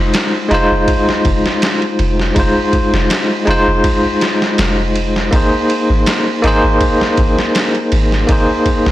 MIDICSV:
0, 0, Header, 1, 4, 480
1, 0, Start_track
1, 0, Key_signature, -4, "minor"
1, 0, Tempo, 740741
1, 1529, Time_signature, 4, 2, 24, 8
1, 5778, End_track
2, 0, Start_track
2, 0, Title_t, "Tine electric piano"
2, 0, Program_c, 0, 4
2, 0, Control_c, 0, 64, 127
2, 0, Note_on_c, 0, 56, 81
2, 0, Note_on_c, 0, 63, 75
2, 0, Note_on_c, 0, 65, 77
2, 0, Note_on_c, 0, 72, 92
2, 296, Note_off_c, 0, 56, 0
2, 302, Note_off_c, 0, 63, 0
2, 308, Note_off_c, 0, 65, 0
2, 314, Note_off_c, 0, 72, 0
2, 317, Note_on_c, 0, 56, 99
2, 328, Note_on_c, 0, 63, 96
2, 339, Note_on_c, 0, 65, 97
2, 351, Note_on_c, 0, 72, 115
2, 1496, Note_off_c, 0, 56, 0
2, 1501, Note_off_c, 0, 63, 0
2, 1507, Note_off_c, 0, 65, 0
2, 1513, Note_off_c, 0, 72, 0
2, 1518, Note_on_c, 0, 56, 85
2, 1528, Note_on_c, 0, 63, 75
2, 1541, Note_on_c, 0, 65, 78
2, 1552, Note_on_c, 0, 72, 99
2, 2217, Note_off_c, 0, 56, 0
2, 2222, Note_off_c, 0, 63, 0
2, 2228, Note_off_c, 0, 65, 0
2, 2233, Note_off_c, 0, 72, 0
2, 2238, Note_on_c, 0, 56, 100
2, 2250, Note_on_c, 0, 63, 100
2, 2261, Note_on_c, 0, 65, 88
2, 2272, Note_on_c, 0, 72, 115
2, 3417, Note_off_c, 0, 56, 0
2, 3422, Note_off_c, 0, 63, 0
2, 3428, Note_off_c, 0, 65, 0
2, 3433, Note_off_c, 0, 72, 0
2, 3441, Note_on_c, 0, 58, 86
2, 3451, Note_on_c, 0, 63, 77
2, 3458, Control_c, 0, 64, 0
2, 3464, Note_on_c, 0, 68, 82
2, 3474, Note_on_c, 0, 72, 101
2, 3568, Control_c, 0, 64, 127
2, 4138, Note_off_c, 0, 58, 0
2, 4143, Note_off_c, 0, 63, 0
2, 4149, Note_off_c, 0, 68, 0
2, 4154, Note_off_c, 0, 72, 0
2, 4161, Note_on_c, 0, 58, 105
2, 4173, Note_on_c, 0, 63, 97
2, 4185, Note_on_c, 0, 68, 94
2, 4195, Note_on_c, 0, 72, 117
2, 5338, Note_off_c, 0, 58, 0
2, 5344, Note_off_c, 0, 63, 0
2, 5350, Note_off_c, 0, 68, 0
2, 5355, Note_off_c, 0, 72, 0
2, 5360, Note_on_c, 0, 58, 84
2, 5372, Note_on_c, 0, 63, 80
2, 5383, Note_on_c, 0, 68, 77
2, 5394, Note_on_c, 0, 72, 93
2, 5778, Note_off_c, 0, 58, 0
2, 5778, Note_off_c, 0, 63, 0
2, 5778, Note_off_c, 0, 68, 0
2, 5778, Note_off_c, 0, 72, 0
2, 5778, End_track
3, 0, Start_track
3, 0, Title_t, "808-style bass"
3, 0, Program_c, 1, 38
3, 0, Note_on_c, 1, 29, 91
3, 79, Note_off_c, 1, 29, 0
3, 333, Note_on_c, 1, 29, 105
3, 444, Note_off_c, 1, 29, 0
3, 462, Note_on_c, 1, 29, 76
3, 558, Note_off_c, 1, 29, 0
3, 812, Note_on_c, 1, 29, 103
3, 923, Note_off_c, 1, 29, 0
3, 1293, Note_on_c, 1, 29, 104
3, 1504, Note_off_c, 1, 29, 0
3, 1531, Note_on_c, 1, 29, 101
3, 1643, Note_off_c, 1, 29, 0
3, 1900, Note_on_c, 1, 29, 90
3, 1997, Note_off_c, 1, 29, 0
3, 2253, Note_on_c, 1, 29, 95
3, 2364, Note_off_c, 1, 29, 0
3, 2382, Note_on_c, 1, 29, 83
3, 2478, Note_off_c, 1, 29, 0
3, 2974, Note_on_c, 1, 29, 90
3, 3430, Note_off_c, 1, 29, 0
3, 3454, Note_on_c, 1, 32, 103
3, 3564, Note_off_c, 1, 32, 0
3, 3823, Note_on_c, 1, 32, 92
3, 3918, Note_off_c, 1, 32, 0
3, 4174, Note_on_c, 1, 32, 94
3, 4284, Note_off_c, 1, 32, 0
3, 4304, Note_on_c, 1, 32, 81
3, 4399, Note_off_c, 1, 32, 0
3, 4653, Note_on_c, 1, 32, 101
3, 4764, Note_off_c, 1, 32, 0
3, 5136, Note_on_c, 1, 32, 100
3, 5345, Note_off_c, 1, 32, 0
3, 5374, Note_on_c, 1, 32, 107
3, 5484, Note_off_c, 1, 32, 0
3, 5745, Note_on_c, 1, 32, 92
3, 5778, Note_off_c, 1, 32, 0
3, 5778, End_track
4, 0, Start_track
4, 0, Title_t, "Drums"
4, 88, Note_on_c, 9, 51, 90
4, 94, Note_on_c, 9, 38, 112
4, 153, Note_off_c, 9, 51, 0
4, 159, Note_off_c, 9, 38, 0
4, 331, Note_on_c, 9, 51, 63
4, 395, Note_off_c, 9, 51, 0
4, 569, Note_on_c, 9, 36, 108
4, 569, Note_on_c, 9, 51, 88
4, 633, Note_off_c, 9, 51, 0
4, 634, Note_off_c, 9, 36, 0
4, 705, Note_on_c, 9, 38, 45
4, 769, Note_off_c, 9, 38, 0
4, 809, Note_on_c, 9, 36, 92
4, 809, Note_on_c, 9, 51, 70
4, 874, Note_off_c, 9, 36, 0
4, 874, Note_off_c, 9, 51, 0
4, 944, Note_on_c, 9, 38, 47
4, 1009, Note_off_c, 9, 38, 0
4, 1050, Note_on_c, 9, 51, 83
4, 1056, Note_on_c, 9, 38, 114
4, 1115, Note_off_c, 9, 51, 0
4, 1121, Note_off_c, 9, 38, 0
4, 1179, Note_on_c, 9, 51, 43
4, 1244, Note_off_c, 9, 51, 0
4, 1290, Note_on_c, 9, 51, 61
4, 1354, Note_off_c, 9, 51, 0
4, 1422, Note_on_c, 9, 38, 37
4, 1487, Note_off_c, 9, 38, 0
4, 1529, Note_on_c, 9, 36, 114
4, 1529, Note_on_c, 9, 51, 96
4, 1593, Note_off_c, 9, 36, 0
4, 1593, Note_off_c, 9, 51, 0
4, 1769, Note_on_c, 9, 36, 94
4, 1769, Note_on_c, 9, 51, 66
4, 1834, Note_off_c, 9, 36, 0
4, 1834, Note_off_c, 9, 51, 0
4, 1903, Note_on_c, 9, 38, 50
4, 1968, Note_off_c, 9, 38, 0
4, 2009, Note_on_c, 9, 51, 88
4, 2015, Note_on_c, 9, 38, 117
4, 2074, Note_off_c, 9, 51, 0
4, 2080, Note_off_c, 9, 38, 0
4, 2250, Note_on_c, 9, 51, 62
4, 2314, Note_off_c, 9, 51, 0
4, 2488, Note_on_c, 9, 51, 89
4, 2489, Note_on_c, 9, 36, 116
4, 2553, Note_off_c, 9, 51, 0
4, 2554, Note_off_c, 9, 36, 0
4, 2730, Note_on_c, 9, 51, 71
4, 2736, Note_on_c, 9, 38, 61
4, 2795, Note_off_c, 9, 51, 0
4, 2801, Note_off_c, 9, 38, 0
4, 2865, Note_on_c, 9, 38, 47
4, 2930, Note_off_c, 9, 38, 0
4, 2969, Note_on_c, 9, 51, 90
4, 2975, Note_on_c, 9, 38, 115
4, 3034, Note_off_c, 9, 51, 0
4, 3040, Note_off_c, 9, 38, 0
4, 3211, Note_on_c, 9, 51, 68
4, 3276, Note_off_c, 9, 51, 0
4, 3345, Note_on_c, 9, 38, 44
4, 3410, Note_off_c, 9, 38, 0
4, 3451, Note_on_c, 9, 36, 118
4, 3451, Note_on_c, 9, 51, 92
4, 3515, Note_off_c, 9, 36, 0
4, 3516, Note_off_c, 9, 51, 0
4, 3692, Note_on_c, 9, 51, 71
4, 3756, Note_off_c, 9, 51, 0
4, 3929, Note_on_c, 9, 51, 87
4, 3935, Note_on_c, 9, 38, 108
4, 3994, Note_off_c, 9, 51, 0
4, 4000, Note_off_c, 9, 38, 0
4, 4171, Note_on_c, 9, 51, 68
4, 4236, Note_off_c, 9, 51, 0
4, 4410, Note_on_c, 9, 51, 82
4, 4411, Note_on_c, 9, 36, 113
4, 4475, Note_off_c, 9, 51, 0
4, 4476, Note_off_c, 9, 36, 0
4, 4545, Note_on_c, 9, 38, 49
4, 4609, Note_off_c, 9, 38, 0
4, 4649, Note_on_c, 9, 51, 70
4, 4650, Note_on_c, 9, 36, 93
4, 4714, Note_off_c, 9, 51, 0
4, 4715, Note_off_c, 9, 36, 0
4, 4786, Note_on_c, 9, 38, 46
4, 4851, Note_off_c, 9, 38, 0
4, 4892, Note_on_c, 9, 51, 88
4, 4897, Note_on_c, 9, 38, 113
4, 4956, Note_off_c, 9, 51, 0
4, 4962, Note_off_c, 9, 38, 0
4, 5020, Note_on_c, 9, 51, 45
4, 5085, Note_off_c, 9, 51, 0
4, 5131, Note_on_c, 9, 51, 65
4, 5196, Note_off_c, 9, 51, 0
4, 5264, Note_on_c, 9, 38, 34
4, 5329, Note_off_c, 9, 38, 0
4, 5370, Note_on_c, 9, 36, 112
4, 5370, Note_on_c, 9, 51, 93
4, 5435, Note_off_c, 9, 36, 0
4, 5435, Note_off_c, 9, 51, 0
4, 5609, Note_on_c, 9, 51, 65
4, 5610, Note_on_c, 9, 36, 92
4, 5674, Note_off_c, 9, 51, 0
4, 5675, Note_off_c, 9, 36, 0
4, 5744, Note_on_c, 9, 38, 46
4, 5778, Note_off_c, 9, 38, 0
4, 5778, End_track
0, 0, End_of_file